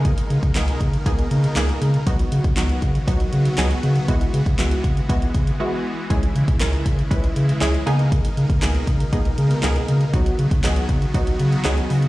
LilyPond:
<<
  \new Staff \with { instrumentName = "Synth pluck" } { \time 4/4 \key gis \minor \tempo 4 = 119 <ais b dis' gis'>8 r8 <ais b dis' gis'>8 r8 <ais b dis' gis'>8 r8 <ais b dis' gis'>8 r8 | <fis b dis' fis'>8 r8 <fis b dis' fis'>8 r8 <fis b dis' fis'>8 r8 <fis b dis' gis'>8 r8 | <gis b e' fis'>8 r8 <gis b e' fis'>8 r8 <gis b e' fis'>8 r8 <gis b e' fis'>8 r8 | <gis cis' e' gis'>8 r8 <gis cis' e' ais'>8 r8 <gis cis' e' b'>8 r8 <gis cis' e' gis'>8 <ais b dis' gis'>8~ |
<ais b dis' gis'>8 r8 <ais b dis' gis'>8 r8 <ais b dis' gis'>8 r8 <ais b dis' gis'>8 r8 | <fis b dis' fis'>8 r8 <fis b dis' gis'>8 r8 <fis b dis' fis'>8 r8 <fis b dis' gis'>8 r8 | }
  \new Staff \with { instrumentName = "Supersaw synth" } { \clef bass \time 4/4 \key gis \minor << { <gis dis' ais'>1 | <b fis'>1~ | <b fis'>1 | <gis e'>2.~ <gis e'>8 <dis' ais'>8~ |
<dis' ais'>1 | <b fis'>1 | } \\ { b,1 | <dis fis>1 | <e gis>1 | cis2.~ cis8 b,8~ |
b,1 | <dis fis>1 | } >> }
  \new Staff \with { instrumentName = "Sub bass" } { \clef bass \time 4/4 \key gis \minor cis8 cis16 cis16 cis,8 cis8 cis,8 cis8 cis,8 cis8 | cis,8 cis16 cis16 cis,8 cis8 cis,8 cis8 cis,8 cis8 | cis,8 cis16 cis16 cis,8 cis8 cis,8 cis8 r4 | cis,8 cis16 cis16 cis,8 cis8 cis,8 cis8 cis,8 cis8~ |
cis8 cis16 cis16 cis,8 cis8 cis,8 cis8 cis,8 cis8 | cis,8 cis16 cis16 cis,8 cis8 cis,8 cis8 cis,8 cis8 | }
  \new DrumStaff \with { instrumentName = "Drums" } \drummode { \time 4/4 <hh bd>16 hh16 hh16 <hh bd>16 <hc hh sn>16 hh16 <hh bd>16 hh16 <hh bd>16 hh16 hh16 hh16 <hc hh sn>16 hh16 hh16 hh16 | <hh bd>16 hh16 hh16 <hh bd>16 <hc hh sn>16 hh16 <hh bd>16 hh16 <hh bd>16 hh16 hh16 hh16 <hc hh sn>16 hh16 hh16 hh16 | <hh bd>16 hh16 hh16 <hh bd>16 <hc hh sn>16 hh16 <hh bd>16 hh16 <hh bd>16 hh16 <hh bd>16 hh16 r4 | <hh bd>16 hh16 hh16 <hh bd>16 <hc hh sn>16 hh16 <hh bd>16 hh16 <hh bd>16 hh16 hh16 hh16 <hc hh sn>16 hh16 hh16 hh16 |
<hh bd>16 hh16 hh16 <hh bd>16 <hc hh sn>16 hh16 <hh bd>16 hh16 <hh bd>16 hh16 hh16 hh16 <hc hh sn>16 hh16 hh16 hh16 | <hh bd>16 hh16 hh16 <hh bd>16 <hc hh sn>16 hh16 <hh bd>16 hh16 <hh bd>16 hh16 hh16 hh16 <hc hh sn>16 hh16 hho16 hh16 | }
>>